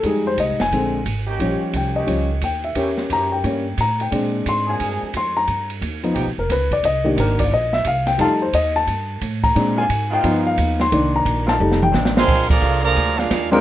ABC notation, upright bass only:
X:1
M:4/4
L:1/8
Q:"Swing" 1/4=176
K:Bbmix
V:1 name="Upright bass" clef=bass
F,,2 (3C,, A,,, F,,, B,,,2 A,,,2 | B,,, z C,,2 _D,,2 E,,2 | =E,,2 _G,,2 =G,,2 =A,,2 | B,,2 A,,2 G,, z F,,2 |
G,,2 ^D,,2 (3=B,,, G,,, F,,, _D,,2 | C,,2 A,,,2 B,,,2 C,,2 | F,,2 E,,2 G,,2 =A,,2 | B,,2 A,,2 G,,2 ^D,,2 |
C,,2 B,,,2 F,,,2 =A,,,2 | [K:Bb] B,,,2 C,,2 D,,2 E,,2 |]